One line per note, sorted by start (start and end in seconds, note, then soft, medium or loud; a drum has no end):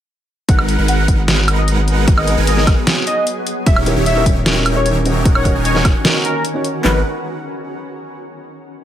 0.49 0.76 G#1 loud
0.49 3.63 F#3 medium
0.49 0.76 G#3 medium
0.49 3.63 B3 medium
0.49 0.76 D#4 medium
0.49 3.63 G#4 medium
0.49 0.76 A#4 medium
0.49 0.76 B4 medium
0.49 0.76 F#5 medium
0.49 0.61 F#5 loud
0.49 kick loud
0.49 closed hi-hat medium
0.59 high woodblock medium
0.69 closed hi-hat medium
0.78 1.06 G#1 loud
0.78 1.06 G#3 medium
0.78 1.06 D#4 medium
0.78 1.06 A#4 medium
0.78 1.06 B4 medium
0.78 1.06 F#5 loud
0.88 1.07 F#5 medium
0.88 closed hi-hat medium
1.08 2.06 G#1 medium
1.08 2.05 D#4 medium
1.08 2.05 F#5 loud
1.08 kick medium
1.08 closed hi-hat medium
1.28 snare loud
1.28 closed hi-hat medium
1.48 closed hi-hat medium
1.48 high woodblock medium
1.58 1.70 D#5 medium
1.68 closed hi-hat medium
1.88 closed hi-hat medium
2.08 2.35 G#1 loud
2.08 2.35 G#3 medium
2.08 2.35 D#4 medium
2.08 2.35 A#4 medium
2.08 2.35 B4 medium
2.08 2.35 F#5 loud
2.08 kick loud
2.08 closed hi-hat medium
2.18 2.36 D#5 medium
2.18 high woodblock medium
2.27 closed hi-hat medium
2.37 2.65 G#1 loud
2.37 2.65 G#3 loud
2.37 2.65 D#4 loud
2.37 2.65 A#4 loud
2.37 2.65 B4 loud
2.37 2.65 G#5 loud
2.47 2.66 D#5 loud
2.47 closed hi-hat medium
2.57 snare soft
2.67 2.75 G#1 loud
2.67 2.77 G#3 medium
2.67 2.77 D#4 medium
2.67 2.76 A#4 medium
2.67 2.77 B4 medium
2.67 2.77 F#5 loud
2.67 kick loud
2.67 closed hi-hat medium
2.67 high woodblock medium
2.87 snare loud
2.87 closed hi-hat medium
3.07 3.25 D#5 loud
3.07 closed hi-hat medium
3.27 closed hi-hat medium
3.47 closed hi-hat medium
3.66 3.94 D#1 medium
3.66 3.94 D#3 medium
3.66 6.81 C#4 medium
3.66 3.94 D#4 medium
3.66 5.24 G4 medium
3.66 3.94 G4 medium
3.66 3.94 C#5 medium
3.66 3.79 E5 loud
3.66 3.94 E5 medium
3.66 kick loud
3.66 closed hi-hat medium
3.76 high woodblock medium
3.85 3.92 C#4 medium
3.85 3.93 E4 medium
3.85 3.93 G4 medium
3.85 3.93 A#4 loud
3.85 closed hi-hat medium
3.96 4.24 D#1 loud
3.96 4.24 D#3 medium
3.96 4.24 D#4 medium
3.96 4.24 G4 medium
3.96 4.24 C#5 medium
3.96 4.24 E5 loud
4.06 4.25 E5 loud
4.06 closed hi-hat medium
4.15 4.22 C#4 medium
4.15 4.22 E4 medium
4.15 4.23 G4 medium
4.15 4.23 A#4 loud
4.26 5.23 D#1 loud
4.26 5.23 D#3 medium
4.26 5.23 D#4 medium
4.26 5.23 G4 medium
4.26 5.23 C#5 medium
4.26 5.23 E5 loud
4.26 kick medium
4.26 closed hi-hat medium
4.45 4.73 C#4 loud
4.45 4.73 E4 medium
4.45 4.74 G4 medium
4.45 4.74 A#4 loud
4.45 snare loud
4.45 closed hi-hat medium
4.66 closed hi-hat medium
4.66 high woodblock medium
4.75 5.03 C#4 medium
4.75 5.03 E4 medium
4.75 5.03 G4 medium
4.75 5.04 A#4 medium
4.75 4.88 C#5 loud
4.86 closed hi-hat medium
5.05 5.42 C#4 medium
5.05 5.43 D#4 medium
5.05 5.43 F#4 medium
5.05 5.43 A#4 medium
5.05 closed hi-hat medium
5.25 5.53 D#1 loud
5.25 5.53 D#3 medium
5.25 6.83 D#3 medium
5.25 5.53 D#4 medium
5.25 6.83 F#4 medium
5.25 5.53 A#4 medium
5.25 5.53 C#5 medium
5.25 5.53 F#5 loud
5.25 kick loud
5.25 closed hi-hat medium
5.35 5.54 C#5 loud
5.35 high woodblock medium
5.44 5.51 C#4 medium
5.44 5.51 D#4 medium
5.44 5.52 F#4 medium
5.44 5.52 A#4 loud
5.44 kick medium
5.44 closed hi-hat medium
5.55 5.83 D#1 loud
5.55 5.83 D#3 loud
5.55 5.83 D#4 loud
5.55 5.83 A#4 loud
5.55 5.83 C#5 medium
5.55 5.83 G#5 loud
5.65 5.84 C#5 loud
5.65 closed hi-hat medium
5.74 5.81 C#4 loud
5.74 5.81 D#4 medium
5.74 5.82 F#4 medium
5.74 5.82 A#4 loud
5.74 snare soft
5.85 5.92 D#1 medium
5.85 5.94 D#3 medium
5.85 5.94 D#4 medium
5.85 5.94 C#5 medium
5.85 5.94 F#5 loud
5.85 kick loud
5.85 closed hi-hat medium
5.85 high woodblock medium
6.04 6.32 C#4 loud
6.04 6.32 D#4 medium
6.04 6.33 F#4 medium
6.04 6.33 A#4 loud
6.04 snare loud
6.04 closed hi-hat medium
6.25 6.43 A#4 loud
6.25 closed hi-hat medium
6.45 closed hi-hat medium
6.54 6.64 C#4 medium
6.54 6.65 D#4 medium
6.54 6.65 F#4 medium
6.54 6.65 C#5 medium
6.64 closed hi-hat medium
6.81 7.03 G#1 loud
6.81 6.99 G#3 medium
6.81 6.98 B3 medium
6.81 6.99 D#4 medium
6.81 6.99 A#4 medium
6.81 6.99 B4 medium
6.81 6.99 F#5 medium
6.81 snare loud
6.81 clap medium
6.85 7.00 F#4 medium
6.85 7.01 A#4 medium